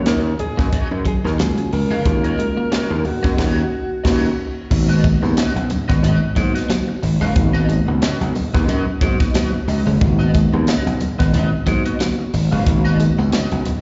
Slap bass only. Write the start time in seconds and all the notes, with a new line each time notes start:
0.06 D#2
0.59 F#2
0.72 muted slap bass stroke
0.91 F#2
1.24 D#2
1.39 C#2
1.73 C#2
2.06 D#2
2.58 muted slap bass stroke
2.90 D#2
3.24 F#2
3.38 D#2
4.05 D#2
4.71 G#1
5.23 D#2
5.56 B1
5.90 G#1
6.03 G#1
6.36 G#2
7.03 G#1
7.21 F#1
7.36 G#1
7.88 C#2
8.21 B1
8.54 D#2
8.68 F#2
9.01 G#2
9.68 C#2
9.86 F#1
10.01 G#1
10.53 D#2
10.86 B1
11.20 G#1
11.34 G#1
11.67 G#2
12.34 G#1
12.53 F#1
12.66 G#1
13.18 C#2
13.52 B1